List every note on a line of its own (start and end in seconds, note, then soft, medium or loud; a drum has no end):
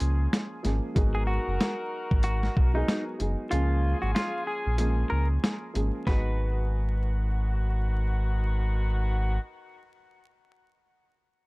0.00 0.28 C#2 medium
0.00 0.57 F3 medium
0.00 0.58 G#3 medium
0.00 0.58 A#3 medium
0.00 0.58 C#4 medium
0.00 0.60 C#4 medium
0.00 0.60 F4 medium
0.00 0.58 G#4 loud
0.00 0.60 G#4 loud
0.00 closed hi-hat medium
0.00 shaker medium
0.33 snare loud
0.33 closed hi-hat medium
0.63 0.80 G#1 loud
0.63 0.93 F3 medium
0.63 0.94 G#3 medium
0.63 0.94 A#3 medium
0.63 0.94 C#4 medium
0.63 0.95 G#4 medium
0.63 snare soft
0.63 closed hi-hat medium
0.63 shaker medium
0.95 1.39 G#1 loud
0.95 2.57 F#3 medium
0.95 2.57 G#3 medium
0.95 2.58 B3 medium
0.95 2.58 D#4 medium
0.95 3.16 D#4 medium
0.95 3.16 F#4 medium
0.95 2.58 G#4 loud
0.95 3.16 A#4 loud
0.95 kick loud
0.95 closed hi-hat medium
1.15 1.27 G#4 medium
1.27 2.19 F#4 medium
1.47 1.58 F#1 medium
1.60 snare loud
1.60 closed hi-hat medium
2.11 2.49 G#1 loud
2.11 kick loud
2.23 2.71 F#4 medium
2.23 closed hi-hat medium
2.43 snare soft
2.57 2.83 B1 medium
2.57 kick loud
2.74 3.16 F#3 loud
2.74 3.16 G#3 medium
2.74 3.17 B3 medium
2.74 3.03 D#4 medium
2.74 3.17 D#4 medium
2.74 3.17 G#4 loud
2.88 snare loud
2.88 closed hi-hat medium
3.19 3.36 F#1 medium
3.19 3.49 F#3 medium
3.19 3.49 G#3 medium
3.19 3.49 B3 medium
3.19 3.50 D#4 medium
3.19 3.50 G#4 medium
3.19 closed hi-hat medium
3.50 3.95 C#2 loud
3.50 4.70 F3 loud
3.50 4.70 G#3 medium
3.50 4.71 A#3 medium
3.50 5.71 C#4 medium
3.50 4.71 C#4 medium
3.50 3.99 F4 medium
3.50 5.71 F4 medium
3.50 5.71 G#4 medium
3.50 4.71 G#4 medium
3.50 closed hi-hat medium
4.02 4.14 G#1 medium
4.02 4.14 F#4 medium
4.15 4.44 F4 medium
4.15 snare loud
4.15 closed hi-hat medium
4.47 4.76 G#4 medium
4.67 5.04 A#1 medium
4.78 5.68 F3 medium
4.78 5.68 G#3 medium
4.78 5.69 A#3 medium
4.78 5.69 C#4 medium
4.78 5.69 G#4 loud
4.78 closed hi-hat medium
5.10 5.38 C#2 medium
5.10 5.27 A#4 medium
5.44 snare loud
5.44 closed hi-hat medium
5.74 5.91 G#1 medium
5.74 6.04 F3 medium
5.74 6.04 G#3 medium
5.74 6.05 A#3 medium
5.74 6.05 C#4 medium
5.74 6.05 G#4 medium
5.74 closed hi-hat medium
6.06 9.38 G#1 medium
6.06 9.38 D#3 medium
6.06 10.08 F#3 medium
6.06 10.08 G#3 medium
6.06 10.08 B3 medium
6.06 9.38 B3 medium
6.06 10.08 D#4 medium
6.06 9.38 F#4 medium
6.06 10.08 G#4 medium
6.06 7.94 B4 medium
6.06 kick loud
6.06 snare medium